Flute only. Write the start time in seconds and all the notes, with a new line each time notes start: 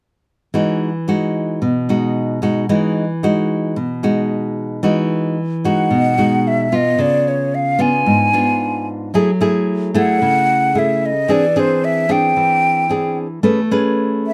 5.66 F#5
6.48 E5
6.75 D#5
7.01 D5
7.28 C#5
7.55 F5
7.81 G#5
9.97 F#5
10.79 E5
11.06 D#5
11.31 D5
11.59 C5
11.85 E5
12.12 G5
14.27 E5